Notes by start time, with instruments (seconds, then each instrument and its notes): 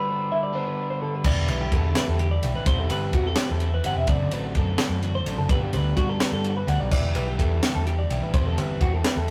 Already playing: overdriven electric guitar G2 D3 G3 B3 D4, clean electric guitar G2 D3 D4 F#4, glockenspiel B5
0.08 clean electric guitar B3 C5
0.32 clean electric guitar D3 E5
0.43 clean electric guitar D5
0.53 overdriven electric guitar G2 D3 G3 B3 D4, clean electric guitar B3 C5
0.67 clean electric guitar B4
0.79 clean electric guitar D4
0.90 clean electric guitar C5
1.02 clean electric guitar D3 A4
1.15 clean electric guitar B4
1.24 picked electric bass E1, clean electric guitar E2 G4 D5, overdriven electric guitar E3 B3 E4 G4, kick, crash
1.48 picked electric bass B1, overdriven electric guitar E3 B3 E4 G4, clean electric guitar G3 B4, ride
1.61 clean electric guitar G4
1.72 picked electric bass E2, overdriven electric guitar E3 B3 E4 G4, clean electric guitar B3 A4, kick, ride
1.85 clean electric guitar D4
1.95 overdriven electric guitar E3 B3 E4 G4, clean electric guitar G3 B4, snare, ride
2.08 picked electric bass E2, clean electric guitar A4
2.19 clean electric guitar G4, ride
2.31 clean electric guitar D5
2.43 picked electric bass B1, overdriven electric guitar E3 B3 E4 G4, clean electric guitar B3, ride
2.55 picked electric bass A1, clean electric guitar D4 B4
2.65 picked electric bass E1, clean electric guitar E2 E4 C5, overdriven electric guitar E3 C4 E4 G4, kick, ride
2.79 clean electric guitar A4
2.90 picked electric bass G1, overdriven electric guitar E3 C4 E4 G4, clean electric guitar B3 B4, ride
3.13 picked electric bass E2, overdriven electric guitar E3 C4 E4 G4, clean electric guitar C4 F#4, kick, ride
3.27 clean electric guitar A4
3.36 overdriven electric guitar E3 C4 E4 G4, clean electric guitar B4, snare, ride
3.50 picked electric bass E2, clean electric guitar A4
3.60 clean electric guitar E4, ride
3.74 clean electric guitar B4
3.84 picked electric bass G1, overdriven electric guitar E3 C4 E4 G4, clean electric guitar C4 F#5, ride
3.96 picked electric bass E1, clean electric guitar E5
4.07 picked electric bass F#1, clean electric guitar F#2 D3 A3 C4 F#4 D5, overdriven electric guitar F#3 C4 D4 A4, kick, ride
4.31 picked electric bass A1, overdriven electric guitar F#3 C4 D4 A4, clean electric guitar A3 B4, ride
4.45 clean electric guitar G4
4.55 picked electric bass F#2, overdriven electric guitar F#3 C4 D4 A4, clean electric guitar C4 A4, kick, ride
4.78 overdriven electric guitar F#3 C4 D4 A4, clean electric guitar B4, snare, ride
4.89 picked electric bass F#2, clean electric guitar A4
5.02 clean electric guitar E2 F#4, ride
5.15 clean electric guitar C5
5.24 picked electric bass A1, clean electric guitar F#2, overdriven electric guitar F#3 C4 D4 A4, ride
5.37 picked electric bass F#1, clean electric guitar A4
5.49 picked electric bass G1, clean electric guitar G2 D3 B3 D4 F#4 B4, overdriven electric guitar G3 B3 D4 G4, kick, ride
5.61 clean electric guitar G4
5.73 picked electric bass D2, overdriven electric guitar G3 B3 D4 G4, clean electric guitar B3 B4, ride
5.97 picked electric bass G2, overdriven electric guitar G3 B3 D4 G4, clean electric guitar D4 F#4, kick, ride
6.09 clean electric guitar A4
6.20 overdriven electric guitar G3 B3 D4 G4, clean electric guitar B3 B4, snare, ride
6.32 picked electric bass G2, clean electric guitar A4
6.44 clean electric guitar F#4, ride
6.57 clean electric guitar B4
6.67 picked electric bass D2, overdriven electric guitar G3 B3 D4 G4, clean electric guitar D4 F#5, ride
6.80 picked electric bass B1, clean electric guitar D5
6.91 picked electric bass E1, clean electric guitar E2 E4 D5, overdriven electric guitar E3 B3 E4 G4, kick, crash
7.03 clean electric guitar G4
7.15 picked electric bass B1, overdriven electric guitar E3 B3 E4 G4, clean electric guitar G3 B4, ride
7.28 clean electric guitar G4
7.38 picked electric bass E2, overdriven electric guitar E3 B3 E4 G4, clean electric guitar D4 A4, kick, ride
7.62 overdriven electric guitar E3 B3 E4 G4, clean electric guitar G3 B4, snare, ride
7.75 picked electric bass E2, clean electric guitar A4
7.87 clean electric guitar G4, ride
7.99 clean electric guitar D5
8.09 picked electric bass B1, overdriven electric guitar E3 B3 E4 G4, clean electric guitar D4, ride
8.22 picked electric bass A1, clean electric guitar B4
8.33 picked electric bass E1, clean electric guitar E2 E3 B3 C4 E4 C5, overdriven electric guitar E3 C4 E4 G4, kick, ride
8.47 clean electric guitar A4
8.57 picked electric bass G1, overdriven electric guitar E3 C4 E4 G4, clean electric guitar B4, ride
8.81 picked electric bass E2, overdriven electric guitar E3 C4 E4 G4, clean electric guitar C4 F#4, kick, ride
8.94 clean electric guitar A4
9.04 overdriven electric guitar E3 C4 E4 G4, clean electric guitar B4, snare, ride
9.16 picked electric bass E2, clean electric guitar A4